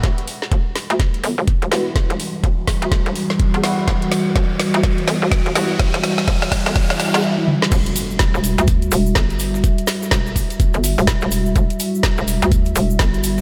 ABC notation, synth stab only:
X:1
M:4/4
L:1/16
Q:"Swing 16ths" 1/4=125
K:Em
V:1 name="Synth stab"
z12 z2 [G,B,EF] z | z12 z2 [G,B,EF] z | z12 z2 [G,B,EF] z | z16 |
z16 | z16 | z16 |]